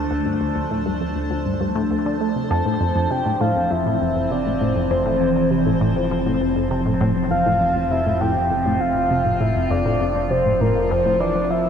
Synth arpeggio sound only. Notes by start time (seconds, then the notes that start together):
0.11 D2
0.26 G2
0.41 D2
0.56 D2
0.71 A2
0.86 G2
1.01 F2
1.16 D2
1.31 D2
1.46 G2
1.61 G2
1.76 A2
1.91 D2
2.06 D3
2.21 A3
2.36 C3
2.51 F2
2.66 A2
2.81 F2
2.96 F2
3.11 C3
3.26 A2
3.41 A2
3.56 F2
3.71 F2
3.86 A2
4.01 F2
4.16 F2
4.31 C3
4.46 A2
4.61 A2
4.76 F2
4.91 F2
5.06 A2
5.21 F2
5.36 F2
5.51 C3
5.66 A2
5.81 A2
5.96 F2
6.11 F2
6.26 A2
6.41 F2
6.56 F2
6.71 C3
6.86 A2
7.01 A2
7.16 F2
7.31 F2
7.46 A2
7.61 F2
7.76 F2
7.91 C3
8.06 A2
8.21 A2
8.36 F2
8.51 F2
8.66 A2
8.81 F2
8.96 F2
9.11 C3
9.26 A2
9.41 A2
9.56 F2
9.71 F2
9.86 A2
10.01 F2
10.16 F2
10.31 C3
10.46 A2
10.61 A2
10.76 F2
10.91 F2
11.05 A2
11.20 E3
11.35 F3
11.51 F3
11.66 F3